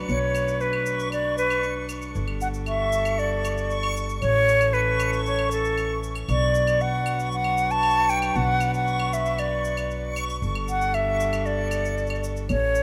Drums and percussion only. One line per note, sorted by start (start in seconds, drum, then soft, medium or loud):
0.09 shaker soft
0.35 claves medium
0.35 shaker medium
0.48 shaker soft
0.61 shaker soft
0.73 claves medium
0.86 shaker medium
1.00 shaker soft
1.12 claves medium
1.12 shaker soft
1.38 shaker medium
1.50 claves medium
1.50 shaker soft
1.63 shaker soft
1.89 claves medium
1.89 shaker medium
2.02 shaker soft
2.15 shaker soft
2.28 claves medium
2.41 shaker medium
2.54 shaker soft
2.66 claves medium
2.66 shaker soft
2.92 shaker medium
3.05 claves medium
3.05 shaker soft
3.19 shaker soft
3.45 claves medium
3.45 shaker medium
3.58 shaker soft
3.71 shaker soft
3.83 claves medium
3.97 shaker medium
4.09 shaker soft
4.22 claves medium
4.22 shaker soft
4.48 shaker medium
4.61 claves medium
4.61 shaker soft
4.74 shaker soft
5.00 claves medium
5.00 shaker medium
5.13 shaker soft
5.26 shaker soft
5.39 claves medium
5.51 shaker medium
5.65 shaker soft
5.78 claves medium
5.78 shaker soft
6.03 shaker medium
6.15 claves medium
6.15 shaker soft
6.29 claves medium
6.29 shaker soft
6.55 shaker medium
6.67 claves medium
6.67 shaker soft
6.80 shaker soft
7.06 claves medium
7.06 shaker medium
7.20 shaker soft
7.32 shaker soft
7.44 claves medium
7.58 shaker medium
7.71 shaker soft
7.83 claves medium
7.90 shaker soft
8.09 shaker medium
8.22 claves medium
8.22 shaker soft
8.35 shaker soft
8.60 claves medium
8.60 shaker medium
8.74 shaker soft
8.87 shaker soft
9.00 claves medium
9.13 shaker medium
9.26 shaker soft
9.38 claves medium
9.38 shaker soft
9.65 shaker medium
9.77 claves medium
9.77 shaker soft
9.91 shaker soft
10.16 claves medium
10.16 shaker medium
10.30 shaker soft
10.43 shaker soft
10.55 claves medium
10.68 shaker medium
10.81 shaker soft
10.94 claves medium
10.94 shaker soft
11.20 shaker medium
11.33 claves medium
11.33 shaker soft
11.46 shaker soft
11.71 claves medium
11.71 shaker medium
11.85 shaker soft
11.98 shaker soft
12.07 claves medium
12.07 shaker soft
12.15 shaker soft
12.24 shaker medium
12.37 shaker soft
12.49 claves medium
12.49 shaker soft
12.75 shaker medium